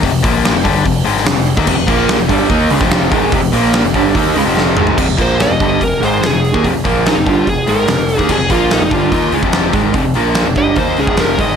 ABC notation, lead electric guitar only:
X:1
M:4/4
L:1/8
Q:1/4=145
K:Fm
V:1 name="Lead electric guitar"
z8 | z8 | z8 | z c e2 B c A2 |
z2 E F A B3 | A F E F2 z3 | z3 e c A B e |]